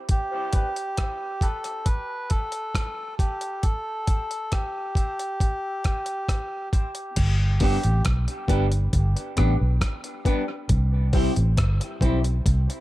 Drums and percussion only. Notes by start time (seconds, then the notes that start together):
0.09 kick, closed hi-hat
0.53 kick, closed hi-hat
0.76 closed hi-hat
0.97 kick, cross-stick, closed hi-hat
1.41 kick, closed hi-hat
1.64 closed hi-hat
1.86 kick, closed hi-hat
2.30 kick, closed hi-hat
2.52 closed hi-hat
2.75 kick, cross-stick, closed hi-hat
3.19 kick, closed hi-hat
3.41 closed hi-hat
3.63 kick, closed hi-hat
4.07 kick, closed hi-hat
4.31 closed hi-hat
4.52 kick, cross-stick, closed hi-hat
4.95 kick, closed hi-hat
5.19 closed hi-hat
5.40 kick, closed hi-hat
5.84 kick, cross-stick, closed hi-hat
6.06 closed hi-hat
6.29 kick, cross-stick, closed hi-hat
6.73 kick, closed hi-hat
6.95 closed hi-hat
7.16 kick, closed hi-hat, crash
7.60 kick, open hi-hat
7.83 closed hi-hat
8.05 kick, cross-stick, closed hi-hat
8.28 closed hi-hat
8.48 kick, closed hi-hat
8.72 closed hi-hat
8.93 kick, closed hi-hat
9.17 closed hi-hat
9.37 kick, cross-stick, closed hi-hat
9.81 kick, cross-stick, closed hi-hat
10.04 closed hi-hat
10.25 kick, closed hi-hat
10.69 kick, closed hi-hat
11.13 kick, open hi-hat
11.36 closed hi-hat
11.57 kick, cross-stick, closed hi-hat
11.81 closed hi-hat
12.01 kick, closed hi-hat
12.24 closed hi-hat
12.46 kick, closed hi-hat
12.70 closed hi-hat